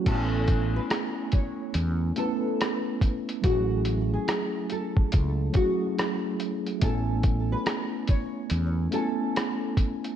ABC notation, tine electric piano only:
X:1
M:4/4
L:1/16
Q:"Swing 16ths" 1/4=71
K:A
V:1 name="Tine electric piano"
[A,B,CEFg]6 z4 [A,B,CEB]4- [A,B,CEB] z | [F,A,CEG]6 z4 [F,A,CEG]4- [F,A,CEG] z | [A,B,CEg]6 z4 [A,B,CEg]4- [A,B,CEg] z |]